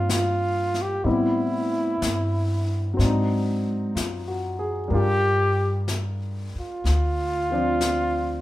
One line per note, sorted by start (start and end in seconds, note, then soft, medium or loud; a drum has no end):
0.00 1.02 G2 medium
0.00 1.03 G3 soft
0.00 1.05 A#3 soft
0.00 1.05 C4 soft
0.00 1.07 D4 soft
0.00 0.11 F4 medium
0.00 1.06 F4 soft
0.09 0.84 F4 medium
0.09 brush sweep soft
0.09 snare soft
0.09 hi-hat pedal medium
0.74 snare soft
0.82 1.06 G4 medium
1.04 1.98 A2 medium
1.04 2.99 G3 soft
1.04 3.00 B3 soft
1.04 2.96 C4 soft
1.04 1.12 D#4 soft
1.04 3.00 E4 soft
1.04 brush sweep soft
1.11 3.02 E4 medium
2.02 2.95 G2 medium
2.02 brush sweep soft
2.02 snare soft
2.02 hi-hat pedal soft
2.94 4.90 F#3 soft
2.94 4.91 C4 soft
2.99 3.92 G#2 medium
2.99 4.90 D4 soft
2.99 brush sweep soft
2.99 snare soft
3.04 4.95 D#4 soft
3.95 4.88 F#2 medium
3.95 4.58 F4 soft
3.95 brush sweep soft
3.95 snare soft
3.95 hi-hat pedal soft
4.28 4.78 F#4 soft
4.59 5.10 G#4 soft
4.88 6.50 G2 medium
4.88 8.41 G3 soft
4.88 7.52 D4 soft
4.88 8.41 A#4 soft
4.93 8.41 F4 soft
4.93 5.86 G4 loud
4.93 brush sweep soft
5.88 brush sweep soft
5.88 snare soft
5.88 hi-hat pedal soft
6.55 muted upright bass stroke soft
6.60 8.41 F4 medium
6.84 8.41 D2 medium
6.84 brush sweep soft
6.84 snare soft
7.51 8.41 F3 soft
7.51 8.41 C4 soft
7.51 8.41 D4 soft
7.81 brush sweep soft
7.81 snare soft
7.81 hi-hat pedal soft